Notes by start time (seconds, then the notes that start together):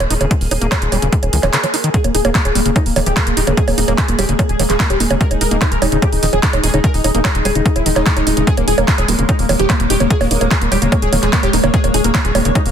Already playing: A#3 G#4
0.00 D#1, closed hi-hat, high bongo
0.10 D#1 D#4, open hi-hat
0.21 D#1 C#3, closed hi-hat, high bongo
0.31 D#3, kick, closed hi-hat
0.41 D#1, open hi-hat
0.51 D#1 D#4, open hi-hat, high bongo
0.61 D#1 A#3, closed hi-hat
0.72 D#3, kick, clap, closed hi-hat, high bongo
0.82 D#1, closed hi-hat
0.92 D#1 G3, open hi-hat, high bongo
1.02 D#1 C#3, closed hi-hat
1.13 G3, kick, closed hi-hat
1.23 D#1, closed hi-hat, high bongo
1.33 C#2 D#3, open hi-hat
1.43 D#1 E3, clap, closed hi-hat, high bongo
1.53 C#3, clap, closed hi-hat
1.64 E3, closed hi-hat, high bongo
1.74 D#4, open hi-hat
1.84 D#3, closed hi-hat
1.94 D#3 G#3 G#4, kick, closed hi-hat
2.04 D#1 A#3, closed hi-hat, high bongo
2.15 D#1 D#4 G#4, open hi-hat
2.25 D#1 A#3, closed hi-hat, high bongo
2.35 D#3 A#3, kick, clap, closed hi-hat
2.45 D#1 G#4, closed hi-hat, high bongo
2.55 D#1 G3 A#3, open hi-hat
2.66 D#1 C#3 A#3, closed hi-hat
2.76 G3 D#4, kick, closed hi-hat, high bongo
2.86 D#1 A#3, open hi-hat
2.96 D#1 D#3 A#3, open hi-hat, high bongo
3.06 D#1 E3 G4, closed hi-hat
3.17 D#3 A#3, kick, clap, closed hi-hat, high bongo
3.27 D#1 A#3, closed hi-hat
3.37 D#1 D#4 G4, open hi-hat
3.47 D#1 C#3 A#3, closed hi-hat, high bongo
3.57 D#3 G#4, kick, closed hi-hat
3.68 D#1 A#3, open hi-hat, high bongo
3.78 D#1 A#3 D#4, open hi-hat
3.88 D#1 A#3, closed hi-hat, high bongo
3.98 D#3 G#4, kick, clap, closed hi-hat
4.08 D#1 A#3, closed hi-hat
4.19 D#1 G3 G4, open hi-hat, high bongo
4.29 D#1 C#3 A#3, closed hi-hat
4.39 G3 A#3, kick, closed hi-hat, high bongo
4.49 D#1 G#4, closed hi-hat
4.59 D#1 D#3 A#3, open hi-hat, high bongo
4.70 D#1 E3 G#4, clap, closed hi-hat
4.80 D#3 A#3, kick, clap, closed hi-hat
4.90 D#1 G4, closed hi-hat, high bongo
5.00 D#1 A#3 D#4, open hi-hat
5.10 D#1 C#3 A#3, closed hi-hat, high bongo
5.21 D#3 A#4, kick, closed hi-hat
5.31 D#1 D#4, closed hi-hat, high bongo
5.41 D#1 D#4 A#4, open hi-hat
5.51 D#1 A#3 D#4, closed hi-hat
5.61 D#3 D#4, kick, clap, closed hi-hat, high bongo
5.72 D#1 A#4, closed hi-hat
5.82 D#1 G3 D#4, open hi-hat, high bongo
5.92 D#1 C#3 D#4, closed hi-hat
6.02 G3 G4, kick, closed hi-hat, high bongo
6.12 D#1 D#4, open hi-hat
6.23 D#1 D#3 D#4, open hi-hat
6.33 D#1 E3 G#4, closed hi-hat, high bongo
6.43 D#3 D#4, kick, clap, closed hi-hat
6.53 D#1 D#4, closed hi-hat, high bongo
6.63 D#1 D#4 G#4, open hi-hat
6.74 D#1 C#3 D#4, closed hi-hat, high bongo
6.84 D#3 A#4, kick, closed hi-hat
6.94 D#1 D#4, open hi-hat
7.04 D#1 D#4, open hi-hat, high bongo
7.15 D#1 A#3 D#4, closed hi-hat
7.25 D#3 A#4, kick, clap, closed hi-hat, high bongo
7.35 D#1 D#4, closed hi-hat
7.45 D#1 G3 G#4, open hi-hat, high bongo
7.55 D#1 C#3 D#4, closed hi-hat
7.66 G3 D#4, kick, closed hi-hat
7.76 D#1 E4, closed hi-hat, high bongo
7.86 D#1 D#3 D#4, open hi-hat
7.96 D#1 E3 D#4, clap, closed hi-hat, high bongo
8.06 D#3 D#4, kick, clap, closed hi-hat
8.17 D#1 D#4, closed hi-hat, high bongo
8.27 D#1 D#4, open hi-hat
8.37 D#1 C#3 D#4, closed hi-hat
8.47 D#3 G#4 C#5, kick, closed hi-hat
8.57 D#1 A#3, closed hi-hat, high bongo
8.68 D#1 D#4 G#4, open hi-hat
8.78 D#1 A#3, closed hi-hat, high bongo
8.88 D#3 A#3, kick, clap, closed hi-hat
8.98 D#1 G#4, closed hi-hat, high bongo
9.08 D#1 G3 A#3, open hi-hat
9.19 D#1 C#3 A#3, closed hi-hat
9.29 G3 D#4, kick, closed hi-hat, high bongo
9.39 D#1 A#3, open hi-hat
9.49 D#1 D#3 A#3, open hi-hat, high bongo
9.59 D#1 E3 G4, closed hi-hat
9.70 D#3 A#3, kick, clap, closed hi-hat, high bongo
9.80 D#1 A#3, closed hi-hat
9.90 D#1 D#4 G4, open hi-hat
10.00 D#1 C#3 A#3, closed hi-hat, high bongo
10.11 D#3 G#4, kick, closed hi-hat
10.21 D#1 A#3, open hi-hat, high bongo
10.31 D#1 A#3 D#4, open hi-hat
10.41 D#1 A#3, closed hi-hat, high bongo
10.51 D#3 G#4, kick, clap, closed hi-hat
10.62 D#1 A#3, closed hi-hat
10.72 D#1 G3 G4, open hi-hat, high bongo
10.82 D#1 C#3 A#3, closed hi-hat
10.92 G3 A#3, kick, closed hi-hat, high bongo
11.02 D#1 G#4, closed hi-hat
11.12 D#1 D#3 A#3, open hi-hat, high bongo
11.23 D#1 E3 G#4, clap, closed hi-hat
11.33 D#3 A#3, kick, clap, closed hi-hat
11.43 D#1 G4, closed hi-hat, high bongo
11.53 D#1 A#3 D#4, open hi-hat
11.63 D#1 C#3 A#3, closed hi-hat, high bongo
11.74 D#3 G#4, kick, closed hi-hat
11.84 D#1 A#3, closed hi-hat, high bongo
11.94 D#1 D#4 G#4, open hi-hat
12.04 D#1 A#3, closed hi-hat
12.15 D#3 A#3, kick, clap, closed hi-hat, high bongo
12.25 D#1 G#4, closed hi-hat
12.35 D#1 G3 A#3, open hi-hat, high bongo
12.45 D#1 C#3 A#3, closed hi-hat
12.55 G3 D#4, kick, closed hi-hat, high bongo
12.66 D#1 A#3, open hi-hat